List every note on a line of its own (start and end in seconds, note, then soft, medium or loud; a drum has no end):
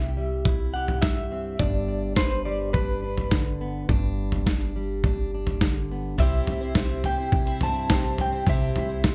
0.00 1.56 C2 medium
0.00 1.03 C3 medium
0.00 0.16 G3 medium
0.00 0.45 E4 soft
0.00 0.75 G4 medium
0.00 0.70 E5 medium
0.17 2.46 G3 medium
0.45 1.57 E4 medium
0.45 kick medium
0.45 floor tom medium
0.74 2.17 G4 medium
0.74 1.00 F#5 medium
0.88 floor tom medium
1.02 1.59 G2 medium
1.02 1.61 E5 medium
1.02 kick medium
1.02 snare medium
1.32 1.57 C4 medium
1.59 3.85 G1 medium
1.59 3.89 G2 medium
1.59 2.75 D4 medium
1.59 2.13 D5 medium
1.59 kick medium
1.59 floor tom medium
2.16 3.86 B4 medium
2.16 2.45 C5 medium
2.16 kick medium
2.16 snare medium
2.45 4.75 G3 medium
2.45 2.73 D5 medium
2.73 3.03 D4 medium
2.73 5.57 B4 medium
2.73 kick medium
2.73 floor tom medium
3.04 3.89 D4 soft
3.17 floor tom medium
3.31 3.86 D3 medium
3.31 kick medium
3.31 snare medium
3.61 3.86 B3 soft
3.89 6.15 G1 medium
3.89 6.19 G2 medium
3.89 4.47 D4 medium
3.89 kick loud
3.89 floor tom medium
4.32 floor tom medium
4.46 5.04 D4 soft
4.46 kick loud
4.46 snare medium
4.76 6.15 G3 medium
5.04 5.33 D4 medium
5.04 kick medium
5.04 floor tom loud
5.34 6.19 D4 soft
5.47 floor tom medium
5.61 6.16 D3 medium
5.61 kick medium
5.61 snare medium
5.91 6.16 B3 soft
6.18 6.40 C2 medium
6.18 6.61 C3 medium
6.18 8.46 C3 medium
6.18 6.62 G3 medium
6.18 6.76 G3 soft
6.18 6.62 C4 medium
6.18 8.17 C4 medium
6.18 6.61 E4 medium
6.18 6.49 E4 medium
6.18 7.04 G4 medium
6.18 6.59 C5 medium
6.18 7.05 E5 medium
6.18 kick medium
6.18 floor tom medium
6.47 7.13 C2 medium
6.47 7.33 E4 medium
6.47 floor tom medium
6.61 6.75 C4 soft
6.61 6.76 E4 soft
6.61 6.75 C5 soft
6.75 7.04 C3 medium
6.75 7.03 G3 medium
6.75 9.04 G3 medium
6.75 7.04 C4 medium
6.75 7.05 E4 medium
6.75 7.05 C5 medium
6.75 kick medium
6.75 snare medium
6.75 floor tom medium
7.04 7.18 G3 medium
7.04 7.19 C4 soft
7.04 7.18 E4 soft
7.04 7.89 G4 medium
7.04 7.17 C5 medium
7.04 7.58 G5 medium
7.04 floor tom medium
7.18 7.48 C4 soft
7.18 7.46 E4 soft
7.18 7.45 C5 soft
7.32 8.20 C3 medium
7.32 7.47 D4 soft
7.32 kick loud
7.32 floor tom medium
7.46 7.61 C4 soft
7.46 8.47 E4 soft
7.46 7.61 E4 soft
7.46 7.61 C5 soft
7.61 8.47 G2 soft
7.61 7.89 G3 soft
7.61 7.90 C4 medium
7.61 7.91 E4 medium
7.61 7.90 C5 medium
7.61 8.21 A5 medium
7.61 floor tom medium
7.90 8.33 C3 medium
7.90 8.33 G3 medium
7.90 8.34 C4 medium
7.90 8.33 E4 medium
7.90 8.47 G4 medium
7.90 8.31 C5 medium
7.90 kick medium
7.90 snare loud
7.90 floor tom medium
8.18 8.44 C4 soft
8.18 8.47 G5 medium
8.18 floor tom medium
8.32 8.47 C4 soft
8.32 8.47 E4 soft
8.32 8.47 C5 soft
8.47 8.69 C2 medium
8.47 8.90 C3 medium
8.47 9.15 C3 medium
8.47 8.90 G3 medium
8.47 8.90 C4 medium
8.47 8.89 E4 medium
8.47 9.15 G4 medium
8.47 8.88 C5 medium
8.47 9.15 E5 medium
8.47 kick loud
8.47 floor tom medium
8.76 9.15 C2 medium
8.76 9.15 E4 soft
8.76 floor tom medium
8.89 9.03 C4 soft
8.89 9.04 E4 soft
8.89 9.04 C5 soft
9.03 9.15 C3 medium
9.03 9.15 G3 medium
9.03 9.15 C4 medium
9.03 9.15 E4 medium
9.03 9.15 C5 medium
9.03 kick medium
9.03 snare medium
9.03 floor tom medium